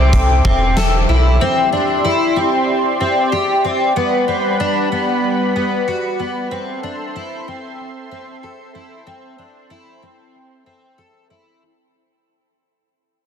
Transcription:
0.00 0.41 C2 medium
0.00 0.44 C4 medium
0.00 1.36 A4 medium
0.00 1.36 C5 medium
0.00 3.92 E5 medium
0.00 1.38 D6 medium
0.13 kick medium
0.13 closed hi-hat medium
0.45 1.05 E1 medium
0.45 0.77 C4 medium
0.45 kick medium
0.77 1.09 A4 medium
0.77 snare medium
0.77 closed hi-hat medium
1.09 1.39 B1 medium
1.09 1.41 E4 medium
1.41 1.72 C4 medium
1.41 3.93 G4 medium
1.41 6.47 D5 medium
1.41 3.93 C6 medium
1.73 2.04 D4 medium
2.05 2.36 E4 medium
2.36 2.99 C4 medium
3.01 3.32 C4 medium
3.32 3.64 G4 medium
3.65 3.96 C4 medium
3.96 6.48 G3 medium
3.96 4.27 B3 medium
3.96 6.49 B4 medium
3.96 6.49 F#5 medium
3.96 6.48 B5 medium
4.28 4.60 C4 medium
4.60 4.91 D4 medium
4.92 5.55 B3 medium
5.56 5.87 B3 medium
5.88 6.19 F#4 medium
6.19 6.51 B3 medium
6.51 6.83 C4 medium
6.51 11.58 C4 medium
6.51 11.58 A4 medium
6.51 11.58 C5 medium
6.51 11.58 E5 medium
6.51 11.58 C6 medium
6.83 7.15 D4 medium
7.16 7.47 E4 medium
7.48 8.10 C4 medium
8.11 8.43 C4 medium
8.43 8.74 A4 medium
8.75 9.06 E4 medium
9.07 9.38 C4 medium
9.38 9.70 D4 medium
9.70 10.02 E4 medium
10.03 10.65 C4 medium
10.66 10.98 C4 medium
10.98 11.30 A4 medium
11.30 11.62 E4 medium

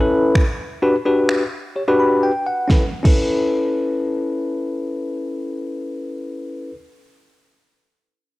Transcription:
0.00 0.43 C#4 medium
0.00 0.43 E4 medium
0.00 0.43 A4 medium
0.00 0.43 B4 loud
0.35 finger snap loud
0.35 kick loud
0.82 0.94 D4 medium
0.82 0.94 F#4 medium
0.82 0.95 G4 medium
0.82 0.95 B4 medium
1.05 1.42 D4 medium
1.05 1.42 F#4 medium
1.05 1.42 G4 medium
1.05 1.42 B4 medium
1.29 finger snap loud
1.76 1.82 G4 medium
1.76 1.82 C#5 medium
1.88 2.30 D4 medium
1.88 2.30 F#4 medium
1.88 2.30 G4 medium
1.88 2.30 B4 loud
2.00 2.21 B5 medium
2.23 2.45 G5 medium
2.46 2.68 F#5 medium
2.68 2.82 C#4 medium
2.68 2.82 E4 medium
2.68 2.83 A4 medium
2.68 kick medium
2.68 snare medium
2.72 2.84 B4 medium
3.03 6.70 C#4 medium
3.03 6.71 E4 medium
3.03 6.73 A4 medium
3.03 kick loud
3.03 crash medium
3.07 6.74 B4 medium

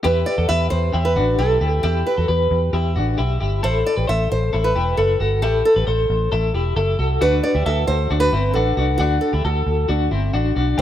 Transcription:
0.04 0.23 E2 medium
0.04 0.36 E4 medium
0.04 0.36 G4 loud
0.04 0.27 B4 loud
0.26 0.48 D5 loud
0.38 0.47 E2 loud
0.38 0.49 F#4 medium
0.38 0.48 A4 medium
0.49 0.68 E2 loud
0.49 0.92 G4 medium
0.49 0.91 B4 medium
0.49 0.70 E5 loud
0.70 0.90 E2 loud
0.70 1.04 C5 loud
0.93 1.18 E2 loud
0.93 1.17 E4 medium
0.93 1.16 G4 medium
1.05 1.40 B4 loud
1.16 1.35 A1 loud
1.16 1.39 D4 medium
1.16 1.38 F#4 medium
1.39 1.57 B1 loud
1.39 1.61 E4 medium
1.39 1.60 G4 medium
1.39 1.80 A4 medium
1.61 1.80 D2 loud
1.61 1.83 E4 medium
1.61 1.82 G4 medium
1.83 2.02 E2 loud
1.83 2.16 E4 medium
1.83 2.04 G4 loud
1.83 2.15 G4 loud
2.07 2.70 B4 medium
2.17 2.27 E2 medium
2.17 2.29 F#4 medium
2.17 2.28 A4 medium
2.28 2.47 E2 loud
2.28 2.71 G4 medium
2.28 2.71 B4 medium
2.51 2.69 E2 loud
2.73 2.98 E2 loud
2.73 2.96 E4 medium
2.73 2.95 G4 medium
2.96 3.14 A1 loud
2.96 3.19 D4 medium
2.96 3.17 F#4 medium
3.18 3.37 B1 medium
3.18 3.40 E4 medium
3.18 3.39 G4 medium
3.41 3.59 G1 medium
3.41 3.63 E4 medium
3.41 3.63 G4 medium
3.63 3.82 A1 loud
3.63 3.95 E4 medium
3.63 3.95 A4 loud
3.63 3.86 C5 loud
3.86 4.09 D5 loud
3.97 4.06 A1 loud
3.97 4.08 G4 medium
3.97 4.07 B4 medium
4.07 4.27 A1 loud
4.07 4.50 A4 medium
4.07 4.50 C5 medium
4.07 4.31 E5 loud
4.32 4.49 A1 loud
4.32 4.64 C5 loud
4.53 4.72 A1 loud
4.53 4.75 E4 medium
4.53 4.75 A4 medium
4.64 4.99 B4 loud
4.76 4.94 E1 loud
4.76 4.97 E4 medium
4.76 4.97 G4 medium
4.97 5.16 F#1 medium
4.97 5.20 E4 medium
4.97 5.39 A4 medium
4.97 5.19 A4 medium
5.20 5.43 G1 medium
5.20 5.43 F#4 medium
5.20 5.41 A4 medium
5.42 5.61 A1 loud
5.42 5.74 E4 medium
5.42 5.63 G4 loud
5.42 5.74 A4 loud
5.65 6.28 A4 loud
5.76 5.85 A1 loud
5.76 5.87 G4 medium
5.76 5.87 B4 medium
5.87 6.06 A1 loud
5.87 6.29 A4 medium
5.87 6.29 C5 medium
6.10 6.28 A1 medium
6.32 6.50 A1 loud
6.32 6.54 E4 medium
6.32 6.54 A4 medium
6.54 6.72 E1 loud
6.54 6.76 E4 medium
6.54 6.77 G4 medium
6.76 6.95 F#1 loud
6.76 6.99 E4 medium
6.76 6.98 A4 medium
6.99 7.17 C2 medium
6.99 7.20 F#4 medium
6.99 7.21 A4 medium
7.21 7.40 D2 loud
7.21 7.53 D4 medium
7.21 7.53 F#4 loud
7.21 7.42 B4 loud
7.43 7.64 D5 loud
7.55 7.64 D2 medium
7.55 7.65 E4 medium
7.55 7.66 G4 medium
7.66 7.84 D2 loud
7.66 8.08 F#4 medium
7.66 8.08 A4 medium
7.66 7.87 E5 loud
7.87 8.07 D2 loud
7.87 8.19 C5 loud
8.11 8.29 D2 loud
8.11 8.33 D4 medium
8.11 8.33 F#4 medium
8.20 8.52 B4 loud
8.33 8.51 G1 loud
8.33 8.56 C4 medium
8.33 8.55 E4 medium
8.54 8.73 A1 medium
8.54 8.77 D4 medium
8.54 8.76 F#4 medium
8.54 8.97 A4 medium
8.77 8.96 C2 medium
8.77 8.99 D4 medium
8.77 8.98 F#4 medium
8.98 9.18 D2 loud
8.98 9.32 D4 medium
8.98 9.21 F#4 loud
8.98 9.31 F#4 loud
9.21 9.85 A4 loud
9.33 9.43 D2 loud
9.33 9.44 E4 medium
9.33 9.44 G4 medium
9.45 9.63 D2 loud
9.45 9.87 F#4 medium
9.45 9.87 A4 medium
9.66 9.85 D2 loud
9.89 10.08 D2 loud
9.89 10.12 D4 medium
9.89 10.11 F#4 medium
10.11 10.30 G1 loud
10.11 10.34 C4 medium
10.11 10.33 E4 medium
10.34 10.52 A1 medium
10.34 10.55 D4 medium
10.34 10.55 F#4 medium
10.56 10.75 B1 medium
10.56 10.79 D4 medium
10.56 10.77 F#4 medium
10.78 10.81 G4 loud

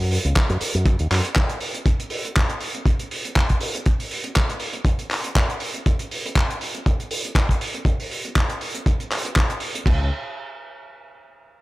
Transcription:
0.00 0.17 F#2 loud
0.11 open hi-hat loud
0.25 0.32 C#2 medium
0.25 closed hi-hat medium
0.35 kick loud
0.35 clap loud
0.35 closed hi-hat medium
0.50 0.60 F#2 medium
0.50 closed hi-hat medium
0.61 muted fingered electric bass stroke soft
0.61 open hi-hat loud
0.75 0.99 F#2 medium
0.75 closed hi-hat medium
0.86 kick loud
0.86 closed hi-hat medium
0.99 1.07 D#2 medium
0.99 closed hi-hat medium
1.11 1.20 F#2 loud
1.11 clap medium
1.11 open hi-hat loud
1.25 closed hi-hat medium
1.35 kick loud
1.35 clap loud
1.35 closed hi-hat medium
1.49 closed hi-hat soft
1.61 open hi-hat loud
1.74 closed hi-hat medium
1.86 kick loud
1.86 closed hi-hat medium
2.00 closed hi-hat medium
2.10 open hi-hat loud
2.25 closed hi-hat medium
2.36 kick loud
2.36 clap loud
2.36 closed hi-hat medium
2.50 closed hi-hat soft
2.60 open hi-hat loud
2.75 closed hi-hat medium
2.86 kick loud
2.86 closed hi-hat medium
2.99 closed hi-hat medium
3.11 open hi-hat loud
3.25 closed hi-hat medium
3.36 kick loud
3.36 clap loud
3.36 closed hi-hat medium
3.49 kick medium
3.49 closed hi-hat medium
3.61 open hi-hat loud
3.75 closed hi-hat medium
3.86 kick loud
3.86 closed hi-hat medium
4.00 open hi-hat medium
4.11 open hi-hat loud
4.24 closed hi-hat medium
4.36 kick loud
4.36 clap loud
4.36 closed hi-hat medium
4.50 closed hi-hat medium
4.60 open hi-hat medium
4.73 closed hi-hat medium
4.85 kick loud
4.85 closed hi-hat medium
4.99 closed hi-hat medium
5.11 clap medium
5.11 open hi-hat medium
5.24 closed hi-hat medium
5.36 kick loud
5.36 clap loud
5.36 closed hi-hat medium
5.50 closed hi-hat medium
5.60 open hi-hat loud
5.74 closed hi-hat medium
5.86 kick loud
5.86 closed hi-hat medium
5.99 closed hi-hat medium
6.11 open hi-hat loud
6.26 closed hi-hat medium
6.36 kick loud
6.36 clap loud
6.36 closed hi-hat medium
6.50 closed hi-hat medium
6.61 open hi-hat medium
6.75 closed hi-hat medium
6.86 kick loud
6.86 closed hi-hat medium
7.00 closed hi-hat soft
7.11 open hi-hat loud
7.25 closed hi-hat medium
7.35 kick loud
7.35 clap loud
7.35 closed hi-hat medium
7.49 kick medium
7.49 closed hi-hat medium
7.61 open hi-hat loud
7.75 closed hi-hat medium
7.85 kick loud
7.85 closed hi-hat medium
8.00 open hi-hat medium
8.11 open hi-hat medium
8.25 closed hi-hat medium
8.36 kick loud
8.36 clap loud
8.36 closed hi-hat medium
8.50 closed hi-hat medium
8.61 open hi-hat loud
8.75 closed hi-hat medium
8.86 kick loud
8.86 closed hi-hat medium
9.00 closed hi-hat medium
9.11 clap medium
9.11 open hi-hat loud
9.25 closed hi-hat medium
9.36 kick loud
9.36 clap loud
9.36 closed hi-hat medium
9.50 closed hi-hat medium
9.60 open hi-hat loud
9.75 closed hi-hat medium
9.86 10.09 C#2 medium
9.86 kick loud
9.86 crash medium

